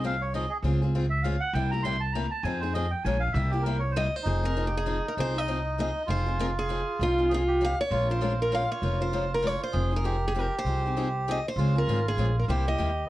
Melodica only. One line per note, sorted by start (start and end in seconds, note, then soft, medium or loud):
0.05 0.22 F5 loud
0.21 0.33 C#5 medium
0.35 0.51 D#5 medium
0.49 0.57 G#4 loud
1.10 1.23 E5 loud
1.22 1.40 F5 medium
1.40 1.53 F#5 loud
1.53 1.71 G5 medium
1.71 1.83 A#5 loud
1.83 2.01 C6 loud
2.00 2.13 A5 loud
2.13 2.31 A#5 medium
2.31 2.44 A5 loud
2.43 2.61 G#5 loud
2.60 2.73 C5 medium
2.73 2.91 D#5 loud
2.90 3.03 G5 medium
3.04 3.22 G#5 loud
3.20 3.33 F5 loud
3.32 3.51 E5 medium
3.50 3.64 G4 medium
3.62 3.81 A#4 medium
3.79 3.93 C#5 medium
3.92 4.03 C5 medium
4.23 6.02 D#4 loud
6.06 7.25 F4 loud
7.29 7.37 G#4 loud
7.47 7.76 G4 medium
7.91 9.79 F4 loud
9.73 10.05 G#4 loud
10.04 11.40 G4 loud
11.57 12.51 F4 loud
12.49 13.05 G4 loud
13.06 13.09 B3 medium